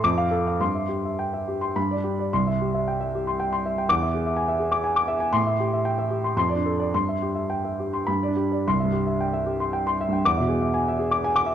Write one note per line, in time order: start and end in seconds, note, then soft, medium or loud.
0.04 0.58 F2 medium
0.04 0.26 D6 medium
0.18 0.40 F5 medium
0.31 0.54 A4 soft
0.47 0.61 F5 soft
0.60 1.72 G2 soft
0.60 0.84 C6 soft
0.75 0.98 E5 soft
0.89 1.13 G4 soft
1.05 1.28 E5 soft
1.19 1.42 G5 soft
1.33 1.56 E5 soft
1.48 1.70 G4 soft
1.61 1.75 C6 soft
1.76 2.30 G2 soft
1.76 1.98 B5 medium
1.91 2.13 D5 soft
1.97 2.25 D4 soft
2.04 2.26 G4 soft
2.19 2.32 D5 soft
2.33 3.84 C2 soft
2.33 2.54 C6 medium
2.47 2.68 E5 soft
2.61 2.81 G4 soft
2.74 2.94 E5 soft
2.88 3.07 G5 soft
3.00 3.20 E5 soft
3.15 3.33 G4 soft
3.27 3.46 C6 soft
3.40 3.58 G5 soft
3.53 3.71 C6 soft
3.66 3.84 E5 soft
3.78 3.89 G5 soft
3.89 5.30 E2 medium
3.89 4.08 D6 medium
4.02 4.21 E5 soft
4.14 4.32 G#4 soft
4.26 4.44 E5 soft
4.37 4.55 G#5 medium
4.48 4.67 E5 soft
4.59 4.79 G#4 soft
4.72 4.91 D6 soft
4.84 5.03 G#5 medium
4.96 5.16 D6 medium
5.08 5.28 E5 medium
5.20 5.33 G#5 soft
5.33 6.32 A2 soft
5.33 5.53 C6 medium
5.47 5.67 E5 soft
5.60 5.80 G4 soft
5.73 5.93 E5 soft
5.85 6.05 G5 soft
5.98 6.18 E5 soft
6.10 6.31 G4 soft
6.24 6.36 C6 soft
6.36 6.90 F2 medium
6.36 6.58 C6 medium
6.49 6.71 D5 soft
6.56 6.84 D4 soft
6.66 6.87 A4 soft
6.80 6.92 D5 soft
6.94 8.05 G2 soft
6.94 7.16 C6 medium
7.09 7.30 E5 soft
7.22 7.44 G4 soft
7.35 7.58 E5 soft
7.50 7.72 G5 soft
7.65 7.87 E5 soft
7.79 8.02 G4 soft
7.93 8.08 C6 soft
8.07 8.65 G2 soft
8.07 8.31 B5 medium
8.23 8.47 D5 soft
8.28 8.59 D4 soft
8.36 8.60 G4 soft
8.52 8.66 D5 soft
8.67 10.20 C2 soft
8.67 8.88 C6 medium
8.80 9.12 G2 soft
8.80 9.01 E5 soft
8.93 9.14 G4 soft
9.07 9.28 E5 soft
9.21 9.41 G5 soft
9.33 9.54 E5 soft
9.46 9.67 G4 soft
9.60 9.80 C6 soft
9.73 9.93 G5 soft
9.87 10.06 C6 medium
10.01 10.20 E5 soft
10.08 10.24 G2 soft
10.13 10.24 G5 soft
10.25 11.55 E2 soft
10.25 10.45 D6 medium
10.37 10.67 B2 soft
10.37 10.58 E5 soft
10.48 10.69 G#4 soft
10.61 10.82 E5 soft
10.74 10.94 G#5 medium
10.88 11.07 E5 soft
10.99 11.18 G#4 soft
11.11 11.30 D6 medium
11.24 11.43 G#5 medium
11.36 11.55 D6 medium
11.46 11.55 E5 medium